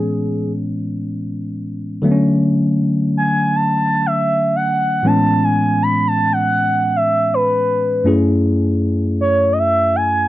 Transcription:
Already playing: A2 E3 G#3 B3 C#4 G#4
2.02 D3 F#3 A3 B3
2.11 C#4
3.17 G#5
3.56 A5
4.06 E5
4.56 F#5
5.03 A2 E3 G#3 B3 C#4 A5
5.44 G#5
5.83 B5
6.08 A5
6.33 F#5
6.96 E5
7.34 B4
8.04 F#2 A3 C#4 E4 G#4
9.21 C#5
9.53 D#5
9.59 E5
9.96 G#5

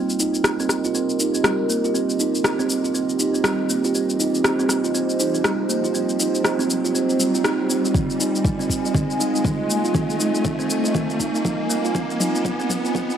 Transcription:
Already playing: C4 G4 A#4 D#5, riser
0.10 cabasa
0.20 D#4, cabasa
0.34 cabasa
0.44 cross-stick, cabasa
0.60 C4, cabasa
0.69 cross-stick, cabasa
0.84 F4, cabasa
0.95 C4, cabasa
1.10 cabasa
1.20 D#4, cabasa
1.34 C4, cabasa
1.44 G3, cross-stick, cabasa
1.70 A#3, cabasa
1.84 F4, cabasa
1.94 C4, cabasa
2.10 cabasa
2.20 D#4, cabasa
2.35 cabasa
2.44 cross-stick, cabasa
2.59 C4, cabasa
2.70 cabasa
2.84 F4, cabasa
2.94 C4, cabasa
3.09 cabasa
3.19 D#4, cabasa
3.34 C4, cabasa
3.44 G3, cross-stick, cabasa
3.70 A#3, cabasa
3.84 F4, cabasa
3.95 C4 C5, cabasa
4.10 cabasa
4.19 D#4, cabasa
4.35 cabasa
4.44 cross-stick, cabasa
4.59 C4, cabasa
4.69 cross-stick, cabasa
4.84 F4, cabasa
4.94 C4, cabasa
5.10 cabasa
5.19 D#4, cabasa
5.34 C4, cabasa
5.44 G3, cross-stick, cabasa
5.69 A#3, cabasa
5.84 F4, cabasa
5.94 C4, cabasa
6.09 cabasa
6.20 D#4, cabasa
6.35 cabasa
6.45 cross-stick, cabasa
6.59 C4, cabasa
6.70 cabasa
6.84 F4, cabasa
6.95 C4, cabasa
7.10 cabasa
7.19 G3, cabasa
7.34 F4, cabasa
7.44 D#4, cross-stick, cabasa
7.70 C4, cabasa
7.85 G3, cabasa
7.94 C4 F4 D#5 G#5, kick, mid tom, cabasa
8.10 cabasa
8.20 D#4, cabasa
8.35 cabasa
8.45 kick, mid tom, cabasa
8.59 C4, cabasa
8.70 kick, cabasa
8.84 F4, cabasa
8.94 C4, kick, mid tom, cabasa
9.10 cabasa
9.19 D#4, cabasa
9.34 D#4, cabasa
9.44 G3, kick, mid tom, cabasa
9.69 A#3, cabasa
9.84 F4, cabasa
9.94 C4, kick, mid tom, cabasa
10.10 cabasa
10.19 D#4, cabasa
10.35 cabasa
10.44 kick, mid tom, cabasa
10.59 C4, cabasa
10.70 cabasa
10.84 F4, cabasa
10.94 C4, kick, mid tom, cabasa
11.10 cabasa
11.20 D#4, kick, cabasa
11.34 D#4, cabasa
11.45 G3, kick, mid tom, cabasa
11.70 A#3, cabasa
11.84 F4, cabasa
11.94 C4, kick, mid tom, cabasa
12.10 cabasa
12.20 D#4, mid tom, cabasa
12.35 cabasa
12.45 kick, mid tom, cabasa
12.60 C4, cabasa
12.70 kick, mid tom, cabasa
12.85 F4, cabasa
12.95 C4, kick, mid tom, cabasa
13.10 cabasa

